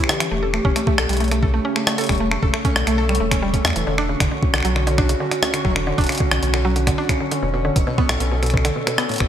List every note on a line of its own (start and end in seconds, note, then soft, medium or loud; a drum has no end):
0.00 0.28 D3 medium
0.00 0.28 E3 medium
0.00 9.28 C#4 medium
0.00 2.05 G4 medium
0.00 9.28 C#5 medium
0.00 finger snap medium
0.09 0.15 D3 medium
0.09 cross-stick loud
0.20 0.30 E3 medium
0.20 finger snap medium
0.20 closed hi-hat medium
0.31 0.60 E1 loud
0.31 3.83 C#3 medium
0.31 0.37 A3 medium
0.31 3.83 A3 medium
0.43 0.53 A4 medium
0.54 0.63 A3 medium
0.54 finger snap medium
0.65 0.73 E1 loud
0.65 0.74 C#4 loud
0.65 kick loud
0.76 0.82 A3 medium
0.76 finger snap medium
0.76 closed hi-hat medium
0.87 0.96 A3 medium
0.87 kick loud
0.98 1.06 B1 medium
0.98 1.04 A4 loud
0.98 finger snap medium
0.98 cross-stick loud
1.09 1.60 B1 medium
1.09 1.15 G3 medium
1.09 closed hi-hat medium
1.13 closed hi-hat medium
1.17 1.30 A3 medium
1.17 closed hi-hat soft
1.20 closed hi-hat soft
1.24 closed hi-hat soft
1.28 1.37 A3 medium
1.28 finger snap medium
1.28 closed hi-hat soft
1.31 closed hi-hat medium
1.43 1.53 A4 medium
1.43 kick loud
1.54 1.63 A3 medium
1.65 1.74 C#4 loud
1.76 1.82 A3 medium
1.76 finger snap medium
1.87 1.96 A3 loud
1.87 cross-stick loud
1.98 2.04 A4 loud
1.98 closed hi-hat medium
2.01 closed hi-hat soft
2.04 closed hi-hat soft
2.09 2.38 E1 loud
2.09 2.15 G3 medium
2.09 3.85 A4 medium
2.09 finger snap medium
2.09 kick medium
2.09 closed hi-hat soft
2.12 closed hi-hat soft
2.15 closed hi-hat soft
2.18 2.30 A3 medium
2.18 closed hi-hat soft
2.31 2.37 A3 medium
2.31 finger snap medium
2.43 2.51 E1 loud
2.43 2.53 A4 medium
2.43 kick loud
2.54 2.63 A3 medium
2.54 finger snap medium
2.65 2.74 C#4 loud
2.65 kick loud
2.65 closed hi-hat soft
2.76 2.84 B1 medium
2.76 2.82 A3 medium
2.76 cross-stick loud
2.87 3.20 B1 medium
2.87 2.96 A3 loud
2.87 finger snap soft
2.87 closed hi-hat medium
2.98 3.04 A4 loud
3.09 3.15 G3 medium
3.09 finger snap soft
3.15 closed hi-hat medium
3.20 3.60 E1 loud
3.20 3.26 A3 medium
3.31 3.41 C#4 medium
3.31 finger snap medium
3.31 kick medium
3.31 closed hi-hat medium
3.43 3.52 G3 loud
3.54 3.59 C#4 medium
3.54 kick medium
3.54 closed hi-hat soft
3.65 3.73 E2 medium
3.65 3.74 C#4 medium
3.65 finger snap soft
3.65 cross-stick loud
3.68 finger snap soft
3.70 finger snap soft
3.73 3.84 E1 medium
3.73 3.86 E3 medium
3.73 finger snap soft
3.73 closed hi-hat medium
3.87 4.15 E1 loud
3.87 3.96 D3 loud
3.87 9.28 D3 medium
3.87 9.28 C#4 medium
3.87 7.39 F#4 loud
3.98 4.04 D4 loud
3.98 finger snap medium
4.09 4.15 C#3 medium
4.20 4.28 E1 loud
4.20 4.30 D3 medium
4.20 finger snap medium
4.20 kick loud
4.20 closed hi-hat medium
4.31 4.37 D3 medium
4.43 4.52 D2 medium
4.43 kick loud
4.54 4.62 B1 medium
4.54 4.63 D3 medium
4.54 finger snap soft
4.54 cross-stick loud
4.56 finger snap soft
4.58 finger snap soft
4.60 finger snap soft
4.63 5.15 B1 medium
4.63 4.74 F#3 medium
4.63 finger snap soft
4.63 closed hi-hat medium
4.76 4.82 D3 medium
4.76 finger snap medium
4.87 4.96 D3 loud
4.87 closed hi-hat soft
4.98 5.04 D4 loud
4.98 finger snap medium
4.98 kick loud
5.09 5.15 C#3 medium
5.09 closed hi-hat medium
5.20 5.30 D3 medium
5.31 5.37 D3 medium
5.31 finger snap medium
5.31 closed hi-hat medium
5.43 5.52 D2 medium
5.43 cross-stick loud
5.54 5.63 D3 medium
5.54 finger snap soft
5.54 closed hi-hat medium
5.65 5.93 E1 loud
5.65 5.74 F#3 loud
5.65 kick medium
5.76 5.82 D3 medium
5.76 finger snap medium
5.87 5.96 D3 loud
5.98 6.06 E1 loud
5.98 6.04 D4 loud
5.98 kick loud
5.98 closed hi-hat soft
6.01 closed hi-hat soft
6.04 closed hi-hat soft
6.07 6.15 C#3 medium
6.07 finger snap medium
6.07 closed hi-hat soft
6.09 closed hi-hat soft
6.12 closed hi-hat soft
6.15 closed hi-hat medium
6.18 6.30 D3 medium
6.18 kick loud
6.18 closed hi-hat medium
6.31 6.39 B1 loud
6.31 6.37 D3 medium
6.31 finger snap medium
6.31 cross-stick loud
6.43 6.93 B1 medium
6.43 6.52 D2 medium
6.43 closed hi-hat medium
6.54 6.63 D3 medium
6.54 finger snap medium
6.65 6.74 F#3 loud
6.76 6.82 D3 medium
6.76 closed hi-hat medium
6.87 6.96 D3 loud
6.87 finger snap medium
6.87 kick medium
6.87 closed hi-hat medium
6.98 7.04 D4 loud
7.09 7.15 C#3 medium
7.09 finger snap medium
7.09 kick medium
7.09 closed hi-hat soft
7.20 7.30 D3 medium
7.31 7.37 D3 medium
7.31 closed hi-hat medium
7.43 7.71 E1 loud
7.43 7.52 B2 medium
7.43 9.19 A4 loud
7.54 7.63 B2 medium
7.65 7.74 D3 loud
7.76 7.84 E1 medium
7.76 7.82 B2 medium
7.76 kick loud
7.76 closed hi-hat medium
7.87 7.96 B2 loud
7.98 8.04 B3 loud
7.98 kick loud
8.09 8.17 B1 loud
8.09 8.15 A2 medium
8.09 finger snap medium
8.09 cross-stick loud
8.20 8.71 B1 medium
8.20 8.30 B2 medium
8.20 closed hi-hat medium
8.31 8.37 B2 medium
8.43 8.52 B2 medium
8.43 finger snap soft
8.43 closed hi-hat soft
8.46 finger snap soft
8.46 closed hi-hat soft
8.50 8.63 B2 medium
8.50 kick loud
8.50 closed hi-hat soft
8.57 finger snap soft
8.65 8.74 D3 loud
8.65 finger snap medium
8.65 closed hi-hat medium
8.76 8.82 B2 medium
8.87 8.96 B2 loud
8.87 finger snap medium
8.87 closed hi-hat medium
8.98 9.04 B3 loud
8.98 cross-stick loud
9.09 9.15 A2 medium
9.09 closed hi-hat soft
9.12 closed hi-hat soft
9.14 closed hi-hat soft
9.16 closed hi-hat soft
9.18 9.28 E1 loud
9.18 9.28 B2 medium
9.18 9.28 B4 medium
9.18 finger snap medium
9.18 kick medium
9.18 closed hi-hat medium